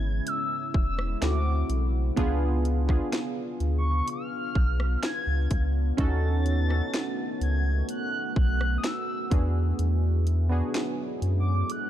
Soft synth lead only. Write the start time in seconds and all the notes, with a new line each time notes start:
Already playing: G#6
0.28 E6
0.75 E6
1.23 D6
3.78 C#6
4.10 F6
5.05 G#6
6.01 A6
7.43 G#6
7.90 F#6
8.38 F#6
8.78 D#6
8.85 E6
11.40 D6
11.72 F#6